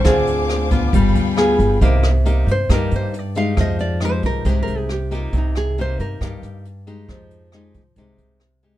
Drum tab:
HH |xxxxxxxx|xxxxxxxx|xxxxxxxx|xxxxxxxx|
SD |r-r---r-|-r--r---|r-r---r-|-r--r---|
BD |o--oo---|o---o---|o--oo---|o---o---|

HH |xxxxxxxx|
SD |r-r---r-|
BD |o--oo---|